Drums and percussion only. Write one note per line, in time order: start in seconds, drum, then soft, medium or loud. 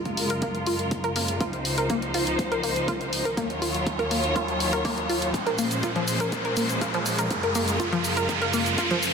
0.05 kick medium
0.05 closed hi-hat soft
0.17 open hi-hat loud
0.30 closed hi-hat medium
0.42 kick loud
0.42 closed hi-hat soft
0.55 closed hi-hat soft
0.66 open hi-hat loud
0.79 closed hi-hat soft
0.91 kick loud
0.91 closed hi-hat medium
1.04 closed hi-hat soft
1.16 open hi-hat loud
1.28 closed hi-hat medium
1.40 kick loud
1.40 closed hi-hat medium
1.53 closed hi-hat soft
1.65 open hi-hat loud
1.78 closed hi-hat medium
1.90 kick loud
1.90 closed hi-hat medium
2.02 closed hi-hat soft
2.14 open hi-hat loud
2.27 closed hi-hat medium
2.39 kick loud
2.39 closed hi-hat medium
2.52 closed hi-hat soft
2.63 open hi-hat loud
2.76 closed hi-hat medium
2.88 kick loud
2.88 closed hi-hat medium
3.01 closed hi-hat soft
3.13 open hi-hat loud
3.25 closed hi-hat medium
3.37 kick loud
3.37 closed hi-hat medium
3.50 closed hi-hat soft
3.62 open hi-hat loud
3.75 closed hi-hat medium
3.86 kick loud
3.86 closed hi-hat soft
3.99 kick medium
3.99 closed hi-hat soft
4.11 open hi-hat loud
4.24 closed hi-hat medium
4.36 kick loud
4.36 closed hi-hat soft
4.48 closed hi-hat soft
4.60 open hi-hat loud
4.73 closed hi-hat soft
4.85 kick loud
4.85 open hi-hat medium
4.98 closed hi-hat soft
5.10 open hi-hat loud
5.22 closed hi-hat medium
5.34 kick loud
5.34 closed hi-hat medium
5.34 shaker soft
5.47 closed hi-hat soft
5.58 open hi-hat loud
5.58 shaker medium
5.71 closed hi-hat medium
5.71 shaker soft
5.83 kick loud
5.83 closed hi-hat medium
5.83 shaker soft
5.96 closed hi-hat soft
6.08 open hi-hat loud
6.08 shaker medium
6.20 closed hi-hat medium
6.20 shaker soft
6.32 kick loud
6.32 closed hi-hat soft
6.32 shaker soft
6.45 closed hi-hat soft
6.57 open hi-hat loud
6.57 shaker medium
6.69 closed hi-hat soft
6.69 shaker soft
6.81 kick loud
6.81 closed hi-hat medium
6.81 shaker soft
6.94 closed hi-hat soft
7.06 open hi-hat loud
7.06 shaker medium
7.19 closed hi-hat medium
7.19 shaker soft
7.31 kick loud
7.31 closed hi-hat medium
7.31 shaker soft
7.43 closed hi-hat soft
7.55 open hi-hat loud
7.55 shaker medium
7.68 closed hi-hat medium
7.68 shaker soft
7.80 kick loud
7.80 closed hi-hat medium
7.80 shaker soft
7.92 closed hi-hat soft
8.04 open hi-hat loud
8.04 shaker medium
8.17 closed hi-hat medium
8.17 shaker soft
8.29 kick loud
8.29 closed hi-hat soft
8.29 shaker soft
8.42 closed hi-hat soft
8.53 open hi-hat loud
8.53 shaker medium
8.66 closed hi-hat medium
8.66 shaker soft
8.78 kick loud
8.78 closed hi-hat medium
8.78 shaker soft
8.91 closed hi-hat soft
9.03 open hi-hat loud
9.03 shaker medium